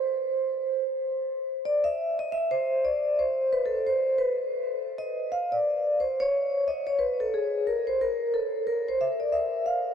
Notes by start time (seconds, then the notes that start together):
Already playing: C5
1.65 D5
1.84 E5
2.19 D#5
2.32 E5
2.51 C5
2.85 D5
3.19 C5
3.53 B4
3.66 A4
3.87 C5
4.18 B4
4.98 D#5
5.32 F5
5.52 D5
6.00 C5
6.20 C#5
6.68 D#5
6.87 C#5
6.99 B4
7.20 A4
7.34 G#4
7.67 A#4
7.87 C5
8.01 A#4
8.34 A4
8.67 A#4
8.88 C5
9.01 E5
9.20 D5
9.32 E5
9.66 F5